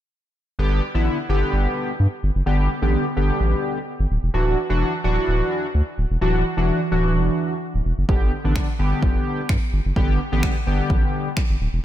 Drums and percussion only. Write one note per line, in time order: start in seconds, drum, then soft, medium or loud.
8.09 kick loud
8.56 finger snap loud
8.56 kick loud
9.03 kick loud
9.49 finger snap loud
9.49 kick loud
9.96 kick loud
10.43 finger snap loud
10.43 kick loud
10.90 kick loud
11.37 finger snap loud
11.37 kick loud